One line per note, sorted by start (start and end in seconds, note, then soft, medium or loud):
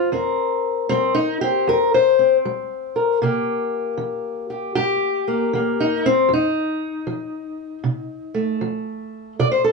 0.00 0.13 C5 medium
0.12 0.84 E2 medium
0.12 0.89 C4 medium
0.12 1.68 A#4 medium
0.89 1.62 G3 medium
0.89 1.15 C4 medium
1.15 1.40 D#4 medium
1.41 2.19 C4 soft
1.41 1.66 G4 medium
1.67 2.38 E2 medium
1.67 1.93 A#4 loud
1.94 2.36 C5 medium
2.19 3.22 C4 soft
2.45 3.16 G3 medium
2.96 3.18 A#4 soft
3.22 3.93 C3 medium
3.22 5.26 A#3 soft
3.22 4.49 G4 medium
3.98 4.69 E3 medium
4.50 4.74 G4 soft
4.75 5.48 G2 medium
4.75 5.78 G4 loud
5.28 5.53 A#3 soft
5.53 6.24 E3 medium
5.53 6.05 A#3 soft
5.80 6.04 D#4 medium
6.06 6.30 C4 loud
6.29 7.00 F2 medium
6.33 8.62 D#4 medium
7.07 7.78 F3 medium
7.84 8.55 C3 medium
8.34 9.34 A3 medium
8.61 9.32 F3 medium
9.39 9.72 C3 medium
9.39 9.51 D5 medium
9.52 9.61 C5 medium
9.64 9.72 A4 medium